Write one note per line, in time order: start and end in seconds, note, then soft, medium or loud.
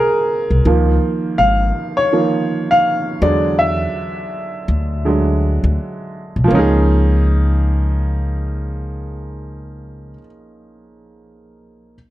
0.00 0.67 G#4 medium
0.00 0.67 A#4 loud
0.00 0.67 C5 medium
0.50 0.63 C2 medium
0.65 0.97 C#2 medium
0.65 2.11 D#3 soft
0.65 2.11 F3 medium
0.65 2.12 A#3 medium
1.38 1.70 G#1 medium
1.38 1.93 F5 medium
1.97 2.72 C#5 medium
2.13 2.45 D#3 soft
2.13 2.45 F3 soft
2.13 2.45 A#3 soft
2.71 3.23 F5 medium
3.22 3.85 E2 medium
3.22 3.73 D3 medium
3.22 3.73 F#3 soft
3.22 3.73 G#3 medium
3.22 3.59 D5 medium
3.59 5.74 E5 medium
4.68 5.59 D2 medium
5.05 5.37 D3 soft
5.05 5.38 F#3 soft
5.05 5.38 G#3 medium
5.64 5.76 D2 medium
6.36 6.49 B1 medium
6.44 10.09 F3 medium
6.44 10.13 A#3 medium
6.51 10.16 C#2 medium
6.51 10.17 C#4 medium
6.55 10.20 D#4 medium
6.55 10.24 G#4 medium